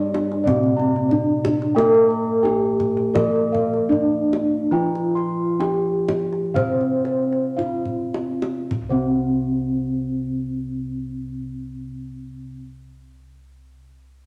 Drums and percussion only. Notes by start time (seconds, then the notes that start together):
0.14 kendang slap, kendang high
0.32 kendang slap
0.47 kendang low
0.63 kendang slap
0.80 kendang slap
0.96 kendang slap
1.11 kendang low
1.45 kendang slap, kendang high, kendang low
1.62 kendang slap
1.78 kendang high
1.95 kendang slap
2.10 kendang slap
2.45 kendang slap, kendang high
2.80 kendang slap, kendang low
2.97 kendang slap
3.15 kendang high, kendang low
3.36 kendang slap
3.55 kendang slap, kendang low
3.74 kendang slap
3.92 kendang low
4.33 kendang slap, kendang high
4.95 kendang slap
5.17 kendang slap
5.61 kendang slap, kendang high
6.09 kendang slap, kendang high, kendang low
6.33 kendang slap
6.56 kendang low
6.81 kendang slap
7.05 kendang slap
7.32 kendang slap
7.59 kendang low
7.85 kendang low
8.14 kendang high
8.42 kendang high
8.71 kendang low